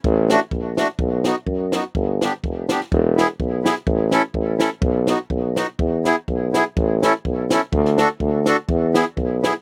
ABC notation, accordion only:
X:1
M:2/4
L:1/8
Q:"Swing" 1/4=125
K:E
V:1 name="Accordion"
z [A,=DF] z [A,DF] | z [B,DF] z [B,DF] | z [B,=D=G] z [B,DG] | z [B,EG] z [B,EG] |
z [CEA] z [CEA] | z [B,DF] z [B,DF] | z [B,EG] z [B,EG] | z [CEA] z [CEA] |
z [=DFA] z [DFA] | z [B,EG] z [B,EG] |]